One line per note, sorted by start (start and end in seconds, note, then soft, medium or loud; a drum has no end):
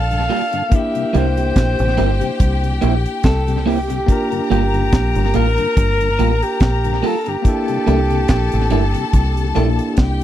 0.00 0.28 A#1 medium
0.00 0.67 A#3 medium
0.00 0.67 D4 medium
0.00 0.69 F4 medium
0.00 0.70 A4 medium
0.00 0.73 A#4 medium
0.00 0.76 F5 loud
0.00 0.70 A5 loud
0.11 0.21 G2 medium
0.11 0.21 D3 medium
0.11 closed hi-hat medium
0.29 0.42 G3 medium
0.29 0.41 A#3 medium
0.29 0.42 A#3 medium
0.29 0.41 F4 medium
0.29 0.42 F4 medium
0.29 0.41 G4 medium
0.29 open hi-hat medium
0.53 0.63 G2 medium
0.53 0.63 D3 medium
0.53 closed hi-hat medium
0.70 4.03 A#3 medium
0.70 4.04 D4 medium
0.70 4.05 E4 medium
0.70 4.05 G4 medium
0.70 4.05 G5 medium
0.70 kick loud
0.70 closed hi-hat medium
0.74 4.06 G4 medium
0.74 1.18 E5 loud
0.95 1.05 C3 medium
0.95 1.05 G3 medium
0.95 closed hi-hat medium
1.13 1.54 C2 medium
1.13 1.26 A#3 medium
1.13 1.25 A#3 medium
1.13 1.26 C4 medium
1.13 1.25 E4 medium
1.13 1.26 E4 medium
1.13 1.25 G4 loud
1.13 2.83 C5 loud
1.13 closed hi-hat medium
1.37 1.47 C3 medium
1.37 1.47 G3 medium
1.37 closed hi-hat medium
1.56 1.78 A#1 medium
1.56 kick loud
1.56 snare loud
1.56 closed hi-hat medium
1.79 1.97 A1 medium
1.79 1.89 C3 medium
1.79 1.89 G3 medium
1.79 closed hi-hat medium
1.97 2.21 G1 medium
1.97 2.09 A#3 medium
1.97 2.10 A#3 medium
1.97 2.10 C4 medium
1.97 2.09 E4 medium
1.97 2.10 E4 medium
1.97 2.09 G4 loud
1.97 closed hi-hat medium
2.21 2.31 C3 medium
2.21 2.31 G3 medium
2.21 closed hi-hat medium
2.40 2.80 C2 loud
2.40 kick loud
2.40 closed hi-hat medium
2.63 2.73 C3 medium
2.63 2.73 G3 medium
2.63 closed hi-hat medium
2.81 3.05 A#1 medium
2.81 2.93 A#3 medium
2.81 2.94 A#3 medium
2.81 2.94 C4 medium
2.81 2.93 E4 medium
2.81 2.95 E4 medium
2.81 2.94 G4 medium
2.81 closed hi-hat medium
3.06 closed hi-hat medium
3.23 4.05 C2 loud
3.23 3.61 A4 loud
3.23 kick loud
3.23 snare loud
3.23 closed hi-hat medium
3.48 3.58 C3 medium
3.48 3.57 G3 medium
3.48 closed hi-hat medium
3.61 3.70 A4 medium
3.66 3.77 A#3 medium
3.66 3.78 A#3 medium
3.66 3.78 C4 medium
3.66 3.78 E4 medium
3.66 3.78 G4 medium
3.66 4.51 G4 loud
3.66 open hi-hat medium
3.90 4.00 C3 medium
3.90 4.00 G3 medium
3.90 closed hi-hat medium
4.06 7.40 A#3 medium
4.06 7.41 D4 medium
4.06 7.42 A#4 medium
4.06 7.42 A#5 medium
4.06 kick loud
4.06 closed hi-hat medium
4.11 7.42 F4 medium
4.11 7.43 A#4 medium
4.31 4.41 G2 medium
4.31 4.41 D3 medium
4.31 closed hi-hat medium
4.50 4.91 G1 loud
4.50 4.62 G3 medium
4.50 4.62 A#3 medium
4.50 4.63 F4 medium
4.50 4.62 F4 medium
4.50 4.62 G4 loud
4.50 5.37 G4 loud
4.50 closed hi-hat medium
4.74 4.83 G2 medium
4.74 4.84 D3 medium
4.74 closed hi-hat soft
4.92 5.15 A#1 medium
4.92 kick loud
4.92 snare loud
4.92 closed hi-hat medium
5.15 5.34 G1 medium
5.15 5.25 G2 medium
5.15 5.25 D3 medium
5.15 closed hi-hat medium
5.34 5.57 A1 medium
5.34 5.47 G3 medium
5.34 5.46 A#3 medium
5.34 5.47 A#3 medium
5.34 5.46 F4 medium
5.34 5.47 F4 medium
5.34 5.46 G4 loud
5.34 6.44 A#4 loud
5.34 closed hi-hat medium
5.58 5.68 G2 medium
5.58 5.68 D3 medium
5.58 closed hi-hat medium
5.77 6.17 G1 loud
5.77 kick loud
5.77 closed hi-hat medium
6.00 6.10 G2 medium
6.00 6.10 D3 medium
6.00 closed hi-hat medium
6.19 6.41 A1 medium
6.19 6.31 G3 medium
6.19 6.30 A#3 medium
6.19 6.31 A#3 medium
6.19 6.31 F4 medium
6.19 6.30 F4 medium
6.19 6.31 G4 medium
6.19 closed hi-hat medium
6.42 7.03 G4 loud
6.42 closed hi-hat medium
6.60 7.01 A#1 medium
6.60 kick loud
6.60 snare loud
6.60 closed hi-hat medium
6.84 6.94 G2 medium
6.84 6.94 D3 medium
6.84 closed hi-hat medium
7.03 7.15 G3 medium
7.03 7.14 A#3 medium
7.03 7.15 A#3 medium
7.03 7.15 F4 medium
7.03 7.16 F4 medium
7.03 7.15 G4 medium
7.03 7.30 A4 loud
7.03 open hi-hat medium
7.26 7.36 G2 medium
7.26 7.37 D3 medium
7.26 9.99 G4 loud
7.26 closed hi-hat medium
7.42 9.50 A#3 medium
7.42 9.51 D4 medium
7.42 9.52 E4 medium
7.42 9.94 A4 medium
7.42 9.94 A5 medium
7.42 kick loud
7.42 closed hi-hat medium
7.48 9.53 A4 medium
7.68 7.79 C3 medium
7.68 7.78 G3 medium
7.68 closed hi-hat soft
7.87 8.28 C2 loud
7.87 7.99 A3 medium
7.87 7.98 A#3 medium
7.87 7.99 A#3 medium
7.87 7.99 D4 medium
7.87 7.99 E4 loud
7.87 8.00 E4 medium
7.87 7.99 A4 loud
7.87 closed hi-hat medium
8.10 8.20 C3 medium
8.10 8.20 G3 medium
8.10 closed hi-hat medium
8.28 8.52 A#1 medium
8.28 kick loud
8.28 snare loud
8.28 closed hi-hat medium
8.52 8.71 A1 medium
8.52 8.63 C3 medium
8.52 8.62 G3 medium
8.52 closed hi-hat medium
8.70 8.94 G1 loud
8.70 8.84 A3 medium
8.70 8.82 A#3 medium
8.70 8.84 A#3 medium
8.70 8.84 D4 medium
8.70 8.83 E4 loud
8.70 8.84 E4 medium
8.70 8.83 A4 loud
8.70 closed hi-hat medium
8.94 9.05 C3 medium
8.94 9.05 G3 medium
8.94 closed hi-hat medium
9.13 9.54 C2 loud
9.13 kick loud
9.13 closed hi-hat medium
9.37 9.47 C3 medium
9.37 9.47 G3 medium
9.37 closed hi-hat medium
9.55 9.79 A#1 medium
9.55 9.68 A3 medium
9.55 10.24 A#3 medium
9.55 9.67 A#3 medium
9.55 9.68 A#3 medium
9.55 10.24 D4 medium
9.55 9.68 D4 medium
9.55 9.67 E4 medium
9.55 9.68 E4 medium
9.55 10.24 E4 medium
9.55 10.24 G4 medium
9.55 9.67 A4 medium
9.55 closed hi-hat medium
9.79 closed hi-hat medium
9.97 10.24 C2 medium
9.97 10.24 G4 medium
9.97 10.24 G5 medium
9.97 kick loud
9.97 snare loud
9.97 closed hi-hat medium